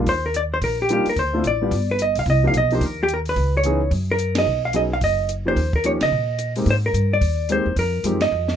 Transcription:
0.06 D#2 C5, kick, open hi-hat
0.26 A#4
0.34 D5, closed hi-hat
0.54 C5
0.61 A#1 A#4, kick, open hi-hat
0.82 G4
0.89 G3 A#3 D4 D#4 F4 G4, closed hi-hat
1.06 A#4, muted upright bass stroke, open hi-hat
1.16 D2 C5, kick, open hi-hat
1.33 A3 C4 D4 E4 F4
1.44 A1 D5, closed hi-hat
1.61 G3 B3 D4 F4 G4
1.71 G1, kick, open hi-hat
1.91 B4
1.99 D#5, closed hi-hat
2.15 B1 F5, open hi-hat
2.26 C2, kick, open hi-hat
2.30 D#5
2.43 F3 A#3 D4 D#4 G4
2.47 F5
2.53 B1, closed hi-hat
2.57 D#5
2.71 F3 A#3 D4 D#4 G4 C5, open hi-hat
2.81 D#2, kick, open hi-hat
2.85 A#4
3.03 G4
3.08 closed hi-hat
3.14 A#4
3.25 B4, open hi-hat
3.36 C#2, kick, open hi-hat
3.57 C#5
3.63 E3 B3 C#4 D#4 G#4, closed hi-hat
3.91 F#2, kick, open hi-hat
4.11 A#4
4.19 closed hi-hat
4.35 F#3 B3 C#4 D#4 G#4 D#5, snare, ride
4.46 B1
4.65 F5
4.73 F#3 B3 C#4 D#4 G#4 D#5, closed hi-hat
4.93 F5
5.01 F#1 D#5, kick, open hi-hat
5.29 closed hi-hat
5.45 F3 A#3 C#4 D#4 G4 C5
5.56 D#2, kick, open hi-hat
5.73 A#4, kick
5.84 F3 A#3 C#4 D#4 G4 C#5, closed hi-hat
6.01 C#2 D#5, snare, ride
6.12 A#2
6.39 closed hi-hat
6.56 G#3 A#3 C4 D#4 G4, open hi-hat
6.66 G#2, kick, open hi-hat
6.70 C5
6.86 A#4
6.94 G2, closed hi-hat
7.13 D5
7.21 D#2, kick, open hi-hat
7.49 G#3 A#3 C4 D#4 G4 C5, closed hi-hat
7.66 E2
7.76 F2 A#4, kick, open hi-hat
8.04 F#2 F3 G#3 C4 D#4 G4, closed hi-hat
8.21 D#5, snare, ride
8.32 F2
8.48 snare

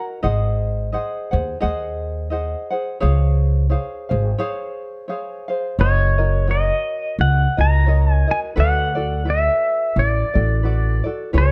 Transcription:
Already playing: F#4 A#4 F#5
0.23 G#1 G#4 C5 D#5 F#5
0.92 G#4 C5 D#5 F#5
1.31 D#2 G#4 C5 F#5
1.60 D#2 G#4 C5 D#5 F#5
2.30 G#4 C5 D#5 F#5
2.70 G#4 C5 F#5
3.00 C#2 G#4 C5 C#5 F5
3.70 G#4 C5 C#5 F5
4.09 G#1 G#4 C5 F5
4.38 G#4 C5 C#5 F5
5.08 G#4 C5 C#5 F5
5.48 G#4 C5 F5
5.79 F#1 F#4 A#4 C#5 D#5
6.18 F#4 A#4 D#5
6.47 F#4 A#4 C#5 D#5
7.19 C#2 F#5
7.57 C#2 F#4 A#4 D#5 A#5
7.86 F#4 A#4 C#5 D#5
8.14 G#5
8.27 F#4 A#4 D#5 G#5
8.56 D2 F#4 A4 B4 D5
8.60 F#5
8.95 F#4 A4 D5
9.25 F#4 A4 B4 D5
9.30 E5
9.96 A1 D5
10.34 A1 F#4 A4 D5
10.63 F#4 A4 B4 D5
11.04 F#4 A4 D5
11.33 C#2 F4 G#4 B4 C#5
11.38 C#5

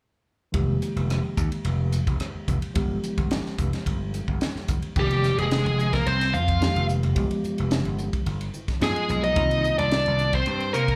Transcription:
0.52 F1 D#3 G#3 A#3 G4, kick, ride
0.82 hi-hat pedal, ride
0.96 F1, ride
1.10 cross-stick, ride
1.37 D#2, kick, hi-hat pedal, ride
1.52 ride
1.65 F1, ride
1.92 hi-hat pedal, ride
2.07 F1, kick, ride
2.20 cross-stick, ride
2.35 muted slap bass stroke
2.48 F1, kick, hi-hat pedal, ride
2.62 muted slap bass stroke, ride
2.74 G1 F3 G#3 B3 G4, kick, ride
3.04 hi-hat pedal, ride
3.18 G1, kick, ride
3.31 snare, ride
3.46 snare
3.58 F1, kick, hi-hat pedal, ride
3.73 snare, ride
3.86 G1, kick, ride
4.14 hi-hat pedal, ride
4.28 G1, kick
4.41 snare, ride
4.55 muted slap bass stroke, snare
4.68 G1, kick, hi-hat pedal, ride
4.82 muted slap bass stroke, ride
4.96 F1 D#3 F3 G3 A#3 G4 G5, kick, crash
5.11 ride
5.24 snare, hi-hat pedal
5.38 F1 G#3 G#4, ride
5.51 snare, ride
5.65 F1, ride
5.79 hi-hat pedal
5.93 A#3 A#4, kick, snare, ride
6.06 C2 C4 C5, ride
6.21 snare, ride
6.33 F2 F4 F5, hi-hat pedal
6.48 kick, ride
6.60 D#3 G#3 A#3 G4, snare, ride
6.76 F1, ride
6.89 hi-hat pedal
7.03 F1, ride
7.15 G1 F3 G#3 B3 G4, kick, ride
7.31 ride
7.44 muted slap bass stroke, hi-hat pedal
7.58 F1, ride
7.71 snare, ride
7.85 G1, ride
7.98 hi-hat pedal
8.13 kick, ride
8.26 G1, ride
8.41 ride
8.54 hi-hat pedal
8.68 kick, snare, ride
8.80 G2 F3 G#3 B3 F4 G#4, snare, ride
8.96 ride
9.09 B1, hi-hat pedal
9.24 D#4 D#5, ride
9.36 C2 D#3 A#3 C4 F4, kick, ride
9.51 ride
9.64 hi-hat pedal
9.78 C2 D4 D5, ride
9.91 snare, ride
10.06 C2, ride
10.19 hi-hat pedal
10.33 C4 C5, kick, ride
10.46 G2, ride
10.60 ride
10.74 C3 A#3 A#4, hi-hat pedal
10.88 kick, ride

